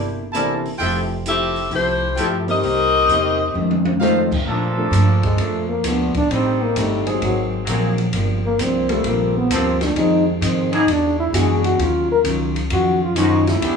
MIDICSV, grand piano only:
0, 0, Header, 1, 2, 480
1, 0, Start_track
1, 0, Tempo, 458015
1, 836, Time_signature, 4, 2, 24, 8
1, 14427, End_track
2, 0, Start_track
2, 0, Title_t, "Grand piano"
2, 0, Program_c, 0, 0
2, 361, Note_on_c, 0, 52, 59
2, 364, Note_on_c, 0, 58, 55
2, 365, Note_on_c, 0, 60, 54
2, 365, Note_on_c, 0, 62, 51
2, 377, Note_on_c, 0, 69, 66
2, 647, Note_off_c, 0, 52, 0
2, 648, Note_off_c, 0, 58, 0
2, 649, Note_off_c, 0, 60, 0
2, 649, Note_off_c, 0, 62, 0
2, 655, Note_off_c, 0, 69, 0
2, 846, Note_on_c, 0, 53, 46
2, 849, Note_on_c, 0, 60, 38
2, 850, Note_on_c, 0, 57, 43
2, 853, Note_on_c, 0, 67, 51
2, 857, Note_on_c, 0, 64, 45
2, 1130, Note_off_c, 0, 53, 0
2, 1131, Note_off_c, 0, 60, 0
2, 1132, Note_off_c, 0, 57, 0
2, 1134, Note_off_c, 0, 67, 0
2, 1135, Note_off_c, 0, 64, 0
2, 2593, Note_on_c, 0, 55, 59
2, 2593, Note_on_c, 0, 58, 54
2, 2597, Note_on_c, 0, 63, 53
2, 2599, Note_on_c, 0, 60, 59
2, 2608, Note_on_c, 0, 67, 71
2, 3205, Note_off_c, 0, 55, 0
2, 3206, Note_off_c, 0, 58, 0
2, 3208, Note_off_c, 0, 60, 0
2, 3208, Note_off_c, 0, 63, 0
2, 3213, Note_off_c, 0, 67, 0
2, 4202, Note_on_c, 0, 53, 57
2, 4211, Note_on_c, 0, 57, 51
2, 4212, Note_on_c, 0, 60, 50
2, 4212, Note_on_c, 0, 63, 50
2, 4212, Note_on_c, 0, 69, 67
2, 4491, Note_off_c, 0, 53, 0
2, 4495, Note_off_c, 0, 57, 0
2, 4495, Note_off_c, 0, 60, 0
2, 4495, Note_off_c, 0, 63, 0
2, 4496, Note_off_c, 0, 69, 0
2, 5000, Note_on_c, 0, 53, 59
2, 5008, Note_on_c, 0, 57, 57
2, 5009, Note_on_c, 0, 58, 56
2, 5009, Note_on_c, 0, 62, 60
2, 5011, Note_on_c, 0, 69, 74
2, 5145, Note_off_c, 0, 53, 0
2, 5150, Note_off_c, 0, 57, 0
2, 5150, Note_off_c, 0, 58, 0
2, 5150, Note_off_c, 0, 62, 0
2, 5151, Note_off_c, 0, 69, 0
2, 7407, Note_on_c, 0, 54, 64
2, 7408, Note_on_c, 0, 60, 63
2, 7409, Note_on_c, 0, 58, 60
2, 7411, Note_on_c, 0, 63, 58
2, 7411, Note_on_c, 0, 68, 81
2, 8013, Note_off_c, 0, 54, 0
2, 8013, Note_off_c, 0, 60, 0
2, 8014, Note_off_c, 0, 58, 0
2, 8015, Note_off_c, 0, 63, 0
2, 8015, Note_off_c, 0, 68, 0
2, 9318, Note_on_c, 0, 55, 75
2, 9323, Note_on_c, 0, 58, 66
2, 9324, Note_on_c, 0, 60, 69
2, 9326, Note_on_c, 0, 69, 81
2, 9328, Note_on_c, 0, 65, 64
2, 9927, Note_off_c, 0, 55, 0
2, 9929, Note_off_c, 0, 58, 0
2, 9930, Note_off_c, 0, 60, 0
2, 9931, Note_off_c, 0, 69, 0
2, 9932, Note_off_c, 0, 65, 0
2, 10446, Note_on_c, 0, 53, 55
2, 10448, Note_on_c, 0, 60, 50
2, 10455, Note_on_c, 0, 56, 47
2, 10456, Note_on_c, 0, 63, 50
2, 10460, Note_on_c, 0, 68, 58
2, 10731, Note_off_c, 0, 53, 0
2, 10732, Note_off_c, 0, 60, 0
2, 10736, Note_off_c, 0, 56, 0
2, 10736, Note_off_c, 0, 63, 0
2, 10738, Note_off_c, 0, 68, 0
2, 11878, Note_on_c, 0, 56, 63
2, 11883, Note_on_c, 0, 59, 62
2, 11886, Note_on_c, 0, 52, 72
2, 11891, Note_on_c, 0, 66, 82
2, 11892, Note_on_c, 0, 62, 59
2, 12358, Note_off_c, 0, 56, 0
2, 12361, Note_off_c, 0, 59, 0
2, 12362, Note_off_c, 0, 52, 0
2, 12365, Note_off_c, 0, 62, 0
2, 12365, Note_off_c, 0, 66, 0
2, 14427, End_track
0, 0, End_of_file